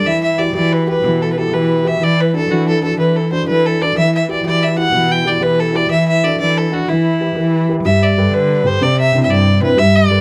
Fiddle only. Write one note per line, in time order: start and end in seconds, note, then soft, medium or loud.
0.06 0.23 E5 loud
0.23 0.40 E5 medium
0.38 0.54 D5 medium
0.55 0.74 D5 medium
0.73 0.88 B4 medium
0.89 1.23 B4 medium
1.22 1.32 A4 medium
1.33 1.39 B4 soft
1.38 1.55 A4 medium
1.53 1.89 B4 medium
1.87 2.05 E5 medium
2.03 2.22 D5 loud
2.20 2.35 B4 medium
2.36 2.53 A4 medium
2.51 2.68 F#4 medium
2.68 2.82 A4 loud
2.84 2.97 A4 loud
2.99 3.18 B4 medium
3.16 3.31 A4 medium
3.32 3.46 C5 medium
3.48 3.67 B4 loud
3.66 3.83 A4 medium
3.82 3.96 D5 loud
3.98 4.13 E5 loud
4.15 4.28 E5 medium
4.31 4.44 D5 medium
4.46 4.65 D5 loud
4.63 4.78 E5 loud
4.78 5.13 F#5 loud
5.11 5.29 G5 loud
5.27 5.44 D5 medium
5.42 5.61 B4 loud
5.59 5.77 A4 medium
5.76 5.90 D5 loud
5.91 6.07 E5 loud
6.08 6.26 E5 loud
6.24 6.39 D5 loud
6.40 6.59 D5 loud
6.58 6.74 A4 medium
6.73 6.90 F#4 medium
6.89 7.69 E4 medium
7.85 8.05 E5 loud
8.03 8.35 D5 medium
8.34 8.68 B4 medium
8.67 8.84 C5 loud
8.83 8.99 D5 medium
9.00 9.22 E5 loud
9.23 9.31 E5 medium
9.30 9.62 D5 loud
9.63 9.80 B4 loud
9.78 9.97 E5 loud
9.96 10.21 D5 loud